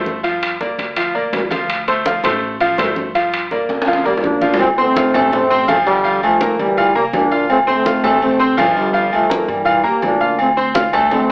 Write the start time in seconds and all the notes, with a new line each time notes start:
Already playing: G1 A3 A4 C5
0.06 high conga
0.23 F3 F4 F5, high conga, high timbale
0.42 high conga, high timbale
0.60 A#3 A#4 D5, high conga, low timbale
0.79 D2, high conga, high timbale
0.96 F3 F4 F5, high conga, high timbale
1.15 A#3 A#4 D5, high conga
1.33 D2, high conga, high timbale, low timbale
1.50 F3 F4 F5, high conga, high timbale
1.69 high conga, high timbale
1.88 A3 A4 C5, high conga, high timbale
2.06 F3 F4 F5, high conga, low timbale
2.23 A1 A3 A4 C5, low conga, high timbale
2.42 high conga
2.60 F3 F4 F5, high conga, high timbale
2.78 G1 A3 A4 C5, high conga, high timbale, low timbale
2.96 high conga
3.14 F3 F4 F5, high conga, high timbale
3.33 high conga, high timbale
3.51 A#3 A#4 D5, high conga, low timbale
3.69 D2, high conga, high timbale
3.82 high timbale
3.87 F3 F4 F5, high conga
3.93 high timbale
4.05 G3 A#3 A#4 D5, high conga
4.17 low timbale
4.23 D2 A#3 D4, high conga
4.41 F3 F4 F5, high conga
4.54 low timbale
4.59 A3 C4, high conga, low agogo
4.78 A3 C4 C5 C6, high conga
4.96 F4 F5 F6, high conga, low agogo
5.14 A1 A3 A4 A5, high conga, low conga, low agogo
5.32 A3 C4, high conga, low conga, low agogo
5.50 C4 C5 C6, high conga
5.68 G1 F3 A3 F4 F5, high conga, low agogo
5.87 D3 G3, low agogo
6.04 F3 F4 F5, high conga
6.23 F3 A3, high conga, low agogo
6.41 A#3 A#4 A#5, high conga
6.59 D2 E3 G3, high conga, low agogo
6.77 F4 F5 F6, high conga, low agogo
6.95 C2 G3 A#3 A#4 A#5, high conga
7.13 D2 A#3 D4, high conga, low timbale, low agogo
7.31 F4 F5 F6, high conga
7.50 A3 C4, high conga, low agogo
7.67 A3 C4 C5 C6, high conga
7.86 F4 F5 F6, high conga, low agogo
8.04 A1 A3 A4 A5, high conga, low conga, low agogo
8.22 A3 C4, high conga, low agogo
8.39 C4 C5 C6, high conga
8.57 G1 F3 A3 F4 F5, high conga, low timbale, low agogo
8.77 D3 G3, low agogo
8.93 F3 F4 F5, high conga
9.13 F3 A3, high conga, low agogo
9.29 A#3 A#4 A#5, high conga
9.48 G2 E3 G3, high conga, low agogo
9.65 F4 F5 F6, high conga, low agogo
9.83 E2 G3 A#3 A#4 A#5, high conga
10.02 D2 A#3 D4, high conga, low timbale, low agogo
10.20 F4 F5 F6, high conga
10.39 A3 C4, high conga, low agogo
10.57 C4 C5 C6, high conga
10.74 F4 F5 F6, high conga, low agogo
10.93 D2 A3 A4 A5, high conga, low conga, low agogo
11.11 A3 C4, high conga, low conga, low agogo